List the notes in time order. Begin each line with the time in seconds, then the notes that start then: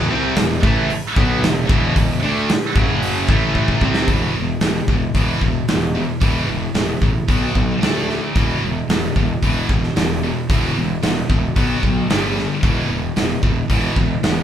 0.10 C2 C3 G3 C4
0.36 E1 E2 B2, snare, open hi-hat
0.63 A1 A2 E3 A3, kick
0.90 muted fingered electric bass stroke, muted overdriven electric guitar stroke, muted distorted electric guitar stroke, open hi-hat
1.16 B1 B2 F#3 B3, kick
1.42 E1 E2 B2, snare, open hi-hat
1.69 E1 E2 B2 E3, kick
1.96 E1 E2 B2, kick, open hi-hat
2.22 D2 D3 A3 D4
2.49 snare, open hi-hat
2.75 F#1 F#2 C#3 F#3, kick
3.02 open hi-hat
3.28 A1 A2 E3 A3, kick
3.55 kick
3.68 kick
3.81 C2 C3 G3 C4, kick
3.94 snare
4.07 E1 E2 B2 E3, kick, open hi-hat
4.35 E1 E2 B2
4.61 E1 E2 B2, snare, open hi-hat
4.88 E1 E2 B2, kick
5.14 E1 E2 B2 E3, kick, open hi-hat
5.41 E1 E2 B2, kick
5.68 E1 E2 B2, snare, open hi-hat
5.96 E2 B2
6.21 E1 E2 B2 E3, kick, open hi-hat
6.48 E1 E2 B2
6.75 E1 E2 B2, snare, open hi-hat
7.02 A1 E2 B2, kick
7.28 B1 B2 F#3 B3, kick, open hi-hat
7.55 B1 B2 F#3, kick
7.82 D2 D3 A3 D4, snare, open hi-hat
8.10 D3 A3, snare
8.36 E1 E2 B2 E3, kick, open hi-hat
8.62 E1 E2 B2
8.89 E1 E2 B2, snare, open hi-hat
9.16 E1 E2 B2, kick
9.42 E1 E2 B2 E3, kick, open hi-hat
9.69 E1 E2 B2, kick
9.84 snare
9.96 E1 E2 B2, snare, open hi-hat
10.23 E2 B2
10.49 E1 E2 B2 E3, kick, open hi-hat
10.76 E1 E2 B2
11.03 E1 E2 B2, snare, open hi-hat
11.30 E1 E2 B2, kick
11.56 B1 B2 F#3 B3, kick, open hi-hat
11.83 B1 B2 F#3, kick
12.10 G1 G2 D3 G3, snare, open hi-hat
12.37 G2 D3, snare
12.63 E1 E2 B2 E3, kick, open hi-hat
12.90 E1 E2 B2
13.16 E1 E2 B2, snare, open hi-hat
13.43 E1 E2 B2, kick
13.70 E1 E2 B2 E3, kick, open hi-hat
13.96 E1 E2 B2, kick
14.23 E1 E2 B2, snare, open hi-hat